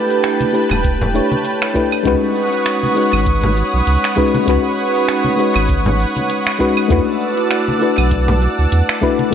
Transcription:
Already playing: A3 D4 E4 G4 B4 G5 A5
0.10 closed hi-hat, cabasa
0.24 finger snap, closed hi-hat, cabasa
0.41 closed hi-hat, high conga, cabasa
0.53 A3 D4 E4 G4 B4, cabasa
0.71 E1, closed hi-hat, low conga, cabasa, claves
0.84 kick, closed hi-hat, cabasa
1.01 low conga, cabasa
1.14 A3 D4 E4 G4 C#5, cabasa
1.32 high conga, cabasa
1.45 closed hi-hat, cabasa
1.62 finger snap, closed hi-hat, cabasa
1.74 A3 D4 E4 G4 B4, kick, cabasa
1.92 closed hi-hat, cabasa, claves
2.03 C#2 G#3 C#4 D#4 F#4 B4 C#5 F#5 B5 D#6, kick, closed hi-hat, cabasa
2.36 cabasa
2.53 closed hi-hat, cabasa
2.66 finger snap, closed hi-hat, cabasa
2.83 high conga
2.94 G#3 C#4 D#4 F#4 B4, cabasa
3.13 G#1, closed hi-hat, cabasa, claves
3.26 kick, closed hi-hat, cabasa
3.44 low conga, cabasa
3.57 cabasa
3.74 B1, cabasa
3.87 C#2, closed hi-hat, cabasa
4.04 finger snap, closed hi-hat, cabasa
4.16 G#3 C#4 D#4 F#4 B4, kick, cabasa
4.34 closed hi-hat, high conga, cabasa
4.45 C#2 G#3 C#4 D#4 F#4 B4, kick, closed hi-hat, cabasa
4.78 cabasa
4.95 closed hi-hat, cabasa
5.08 finger snap, closed hi-hat, cabasa
5.25 high conga
5.37 G#3 C#4 D#4 F#4 B4, cabasa
5.56 G#1, closed hi-hat, cabasa, claves
5.69 kick, closed hi-hat, cabasa
5.86 low conga, cabasa
5.99 cabasa
6.16 high conga, cabasa
6.30 closed hi-hat, cabasa
6.47 finger snap, closed hi-hat, cabasa
6.59 G#3 C#4 D#4 F#4 B4, kick, cabasa
6.77 closed hi-hat, cabasa, claves
6.88 E2 A3 D4 E4 F#4 B4 D5 A5 E6, kick, closed hi-hat, cabasa
7.21 cabasa
7.37 closed hi-hat, cabasa
7.51 finger snap, closed hi-hat, cabasa
7.68 high conga
7.79 A3 D4 E4 F#4 B4, cabasa
7.98 B1, closed hi-hat, cabasa, claves
8.11 kick, closed hi-hat, cabasa
8.28 low conga, cabasa
8.42 cabasa
8.59 D2, cabasa
8.72 E2, closed hi-hat, cabasa
8.89 finger snap, closed hi-hat, cabasa
9.01 A3 D4 E4 F#4 B4, kick, cabasa
9.19 closed hi-hat, high conga, cabasa
9.30 A3

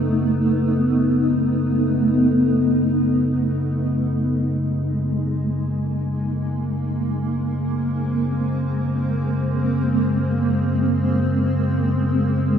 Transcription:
Already playing: F#2 C#3 A3 B3 D#4
3.75 G#3
4.55 A#3
6.79 C4

